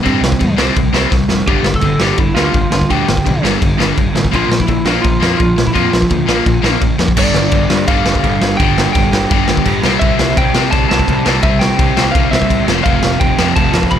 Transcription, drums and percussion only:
0.06 kick, crash
0.24 snare
0.32 kick
0.41 kick, crash
0.58 snare
0.76 kick, crash
0.94 snare
1.11 kick, snare
1.29 snare
1.48 kick, crash
1.64 snare
1.74 kick
1.81 kick, crash
2.00 snare
2.18 kick, crash
2.37 snare
2.54 kick, crash
2.72 snare
2.81 kick
2.90 kick, crash
3.08 snare
3.17 kick
3.26 kick, crash
3.45 snare
3.62 kick, crash
3.80 snare
3.98 kick, crash
4.16 snare
4.25 kick
4.34 kick, crash
4.52 snare
4.60 kick
4.68 kick, crash
4.86 snare
5.04 kick, crash
5.23 snare
5.40 kick, crash
5.58 snare
5.67 kick
5.75 kick, crash
5.93 snare
6.02 kick
6.10 kick, crash
6.29 snare
6.46 kick, crash
6.64 snare
6.81 kick, crash
6.99 snare
7.08 kick
7.17 kick, crash
7.34 snare
7.52 kick, crash
7.70 snare
7.88 kick, crash
8.06 snare
8.15 kick
8.24 kick, crash
8.42 snare
8.60 kick, crash
8.78 snare
8.95 kick, crash
9.13 snare
9.31 kick, crash
9.48 snare
9.57 kick
9.65 kick, crash
9.84 snare
10.01 kick, crash
10.19 snare
10.37 kick, crash
10.55 snare
10.72 kick, crash
10.91 snare
10.99 kick
11.08 kick, crash
11.26 snare
11.43 kick, crash
11.61 snare
11.79 kick, crash
11.97 snare
12.15 kick, crash
12.33 snare
12.42 kick
12.50 kick, crash
12.68 snare
12.86 kick, crash
13.03 snare
13.21 kick, crash
13.39 snare
13.56 kick, crash
13.74 snare
13.83 kick
13.91 kick, crash

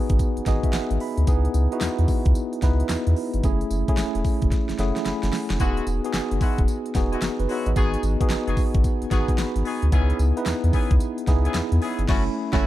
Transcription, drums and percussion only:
0.09 kick, closed hi-hat
0.19 kick, closed hi-hat, tambourine
0.37 closed hi-hat
0.46 kick, snare, closed hi-hat, tambourine
0.63 kick, closed hi-hat
0.73 snare, clap, closed hi-hat, tambourine
0.91 closed hi-hat
1.00 open hi-hat
1.17 closed hi-hat
1.27 kick, closed hi-hat, tambourine
1.45 closed hi-hat
1.54 closed hi-hat, tambourine
1.72 closed hi-hat
1.81 snare, clap, closed hi-hat, tambourine
1.98 closed hi-hat
2.08 kick, open hi-hat, tambourine
2.25 kick, closed hi-hat
2.35 closed hi-hat, tambourine
2.53 closed hi-hat
2.62 kick, snare, closed hi-hat, tambourine
2.80 closed hi-hat
2.89 snare, clap, closed hi-hat, tambourine
3.07 closed hi-hat
3.16 open hi-hat
3.34 closed hi-hat
3.43 kick, closed hi-hat, tambourine
3.61 closed hi-hat
3.71 closed hi-hat, tambourine
3.88 kick, closed hi-hat
3.97 snare, clap, closed hi-hat, tambourine
4.15 closed hi-hat
4.25 kick, open hi-hat, tambourine
4.42 kick, closed hi-hat
4.52 kick, snare, closed hi-hat
4.69 snare, closed hi-hat
4.79 snare, closed hi-hat
4.96 snare, closed hi-hat
5.06 snare, closed hi-hat
5.23 snare, closed hi-hat
5.33 snare, open hi-hat
5.50 snare, closed hi-hat
5.60 kick, closed hi-hat, tambourine
5.77 closed hi-hat
5.87 closed hi-hat, tambourine
6.04 closed hi-hat
6.14 snare, clap, closed hi-hat, tambourine
6.31 closed hi-hat
6.41 kick, open hi-hat, tambourine
6.58 kick, closed hi-hat
6.68 closed hi-hat, tambourine
6.86 closed hi-hat
6.95 kick, snare, closed hi-hat, tambourine
7.13 closed hi-hat
7.22 snare, clap, closed hi-hat, tambourine
7.39 closed hi-hat
7.49 open hi-hat
7.66 closed hi-hat
7.76 kick, closed hi-hat, tambourine
7.94 closed hi-hat
8.03 closed hi-hat, tambourine
8.21 kick, closed hi-hat
8.30 snare, clap, closed hi-hat, tambourine
8.48 closed hi-hat
8.57 kick, open hi-hat, tambourine
8.74 kick, closed hi-hat
8.84 kick, closed hi-hat, tambourine
9.02 closed hi-hat
9.11 kick, snare, closed hi-hat, tambourine
9.28 kick, closed hi-hat
9.38 snare, clap, closed hi-hat, tambourine
9.56 closed hi-hat
9.65 open hi-hat
9.82 closed hi-hat
9.92 kick, closed hi-hat, tambourine
10.10 closed hi-hat
10.19 closed hi-hat, tambourine
10.37 closed hi-hat
10.46 snare, clap, closed hi-hat, tambourine
10.64 closed hi-hat
10.73 kick, open hi-hat, tambourine
10.91 kick, closed hi-hat
11.00 closed hi-hat, tambourine
11.18 closed hi-hat
11.27 kick, snare, closed hi-hat, tambourine
11.45 closed hi-hat
11.54 snare, clap, closed hi-hat, tambourine
11.72 closed hi-hat
11.82 open hi-hat
11.99 closed hi-hat
12.09 kick, snare, crash
12.53 kick, snare

